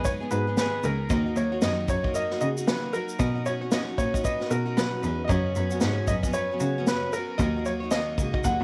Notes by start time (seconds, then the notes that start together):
Already playing: F#2
0.04 G#3 B3 D#4 G#4 B4 C#5, kick, shaker
0.20 G#3 B3 D#4 G#4
0.31 G#2 F#4 B4, shaker
0.47 G#3 B3 D#4 G#4
0.57 G#2 D#3 G#3 B3 D#4 G#4 B4, snare, shaker
0.83 C#2 G#3 B3 D#4 G#4 A#4, shaker
1.10 D#2 D#3 F#3 A#3 D#4 F#4 D#5, kick, shaker
1.26 A#3 D#4 F#4
1.36 D#2 F#3 A#3 D#4 F#4 C#5, shaker
1.52 A#3 D#4 F#4 C#5
1.62 F#2 D#3 F#3 A#3 D#4 F#4 D#5, snare, shaker
1.88 F#2 F#3 A#3 D#4 F#4 C#5, kick, shaker
2.03 A#3 D#4 F#4 D#5, kick
2.14 F#3 A#3 D#4 F#4 A#4 D#5, shaker
2.31 A#3 D#4 F#4, snare
2.40 C#3 F#4 D#5, shaker
2.57 A#3 D#4 F#4, shaker
2.67 D#3 F#3 A#3 D#4 F#4 B4, snare, shaker
2.93 F#3 A#3 D#4 F#4 A#4, shaker
3.09 shaker
3.19 B2 F#3 C#4 D#4 F#4 D#5, kick, shaker
3.35 C#4 D#4 F#4
3.46 F#3 C#4 D#4 F#4 C#5, shaker
3.61 C#4 D#4 F#4 C#5
3.72 B2 F#3 C#4 D#4 F#4 D#5, snare, shaker
3.98 A#2 F#3 C#4 D#4 F#4 C#5, kick, shaker
4.14 C#4 D#4 F#4 D#5, kick, shaker
4.24 F#3 C#4 D#4 F#4 B4 D#5, kick, shaker
4.40 C#4 D#4 F#4, snare
4.50 B2 F#4 A#4, shaker
4.66 C#4 D#4 F#4
4.77 B2 F#3 C#4 D#4 F#4 B4, snare, shaker
5.02 E2 F#3 C#4 D#4 B4, shaker
5.07 F#4
5.24 D#5
5.29 F#2 C#3 F#3 B3 C#4 F#4 C#5, kick, shaker
5.56 F#2 F#3 B3 C#4 F#4, shaker
5.70 B3 C#4 F#4 C#5, shaker
5.75 F#3
5.81 F#2 G#2 C#3 F#3 B3 C#4 D#5, snare, shaker
5.85 F#4
6.07 F#2 F#3 B3 C#4 F#4 D#5, kick, shaker
6.23 C#4 F#4 D#5, kick, shaker
6.27 F#3 B3
6.33 F#3 B3 B4 C#5, shaker
6.38 C#4 F#4
6.51 F#3 B3 C#4 F#4
6.60 C#3 F#4, shaker
6.78 F#3 B3 C#4 F#4
6.87 F#2 C#3 F#3 B3 C#4 F#4 B4, snare, shaker
7.12 F#3 A#4 B4, shaker
7.17 B3 C#4 F#4
7.38 D#2 D#3 F#3 D#5, kick, shaker
7.42 A#3 D#4 F#4
7.56 A#3 D#4 F#4
7.65 F#3 A#3 D#4 F#4 C#5, shaker
7.80 D#4 F#4 C#5
7.85 A#3
7.91 D#3 F#3 A#3 D#4 F#4 D#5, snare, shaker
8.18 C#2 F#3 A#3 D#4 F#4, kick, shaker
8.33 A#3 D#4 F#4 D#5, kick
8.44 D#2 F#3 A#3 D#4 F#4 G#4 F#5, kick, shaker
8.60 E2 F#4